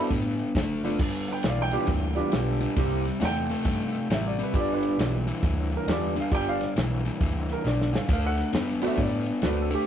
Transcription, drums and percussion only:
0.10 kick, closed hi-hat
0.39 closed hi-hat
0.55 kick, snare, closed hi-hat
0.83 snare, closed hi-hat
0.99 kick, crash
1.28 snare, ride
1.43 snare, ride
1.71 ride
1.87 kick, snare, ride
2.16 snare, ride
2.32 snare, ride
2.60 ride
2.76 kick, snare, ride
3.05 snare, ride
3.21 snare, ride
3.49 ride
3.65 kick, ride
3.95 ride
4.10 snare, ride
4.39 ride
4.54 kick, ride
4.83 ride
4.99 snare, ride
5.28 ride
5.43 kick, ride
5.72 ride
5.88 snare, ride
6.17 ride
6.32 kick, snare, ride
6.61 snare, ride
6.76 snare, ride
7.06 ride
7.21 kick, ride
7.49 snare, ride
7.67 snare
7.81 snare
7.95 snare
8.09 kick, snare, ride, crash
8.37 snare, ride
8.53 snare, ride
8.82 ride
8.97 kick, ride
9.26 ride
9.42 snare, ride
9.71 ride

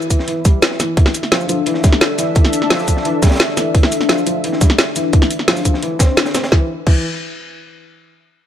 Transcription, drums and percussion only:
0.02 cabasa
0.10 kick, closed hi-hat, cabasa
0.19 snare
0.28 closed hi-hat
0.45 kick, closed hi-hat, cabasa
0.62 snare, closed hi-hat, cabasa
0.71 snare
0.80 snare, closed hi-hat, cabasa
0.97 kick, closed hi-hat
1.06 snare
1.14 closed hi-hat, cabasa
1.23 snare, closed hi-hat
1.32 snare, closed hi-hat
1.41 cabasa
1.49 closed hi-hat, cabasa
1.66 closed hi-hat
1.74 snare
1.84 kick, snare, closed hi-hat, cabasa
1.93 snare
2.01 snare, closed hi-hat, cabasa
2.18 snare, closed hi-hat, cabasa
2.35 kick, closed hi-hat
2.45 snare, closed hi-hat
2.53 closed hi-hat, cabasa
2.62 snare
2.70 snare, closed hi-hat, open hi-hat
2.79 snare, cabasa
2.88 kick, closed hi-hat, cabasa
2.97 snare
3.05 closed hi-hat
3.22 kick, snare, closed hi-hat, cabasa
3.27 snare, closed hi-hat
3.31 snare, closed hi-hat
3.36 snare, closed hi-hat
3.39 snare, closed hi-hat, cabasa
3.49 snare
3.57 snare, closed hi-hat, cabasa
3.75 kick, closed hi-hat
3.83 snare
3.92 closed hi-hat, cabasa
4.01 snare, closed hi-hat
4.09 snare, closed hi-hat
4.18 cabasa
4.27 closed hi-hat, cabasa
4.44 closed hi-hat
4.52 snare
4.61 kick, snare, closed hi-hat, cabasa
4.70 snare
4.79 snare, closed hi-hat, cabasa
4.96 snare, closed hi-hat, cabasa
5.13 kick, closed hi-hat
5.22 snare, closed hi-hat
5.31 closed hi-hat, cabasa
5.39 snare
5.48 snare, closed hi-hat, open hi-hat
5.57 snare, cabasa
5.65 kick, closed hi-hat, cabasa
5.74 snare
5.83 closed hi-hat
5.99 kick, snare, closed hi-hat, cabasa
6.17 snare, closed hi-hat, cabasa
6.26 snare, closed hi-hat, cabasa
6.34 snare, closed hi-hat, cabasa
6.44 snare, closed hi-hat
6.52 kick, snare
6.87 kick, crash

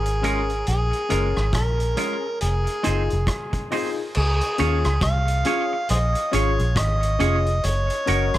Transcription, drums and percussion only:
0.06 closed hi-hat
0.24 closed hi-hat
0.50 closed hi-hat
0.67 closed hi-hat
0.93 closed hi-hat
1.10 closed hi-hat
1.37 cross-stick
1.53 kick, cross-stick, closed hi-hat
1.80 closed hi-hat
1.97 closed hi-hat
2.41 closed hi-hat
2.67 closed hi-hat
2.84 closed hi-hat
3.10 closed hi-hat
3.27 kick, cross-stick, closed hi-hat
3.53 kick, closed hi-hat
3.71 open hi-hat
4.15 crash
4.41 closed hi-hat
4.58 closed hi-hat
4.84 cross-stick, closed hi-hat
5.01 kick, cross-stick, closed hi-hat
5.28 closed hi-hat
5.45 closed hi-hat
5.89 closed hi-hat
6.15 closed hi-hat
6.33 closed hi-hat
6.59 closed hi-hat
6.76 kick, cross-stick, closed hi-hat
7.03 closed hi-hat
7.20 closed hi-hat
7.46 closed hi-hat
7.64 closed hi-hat
7.90 closed hi-hat
8.07 closed hi-hat
8.34 cross-stick, closed hi-hat

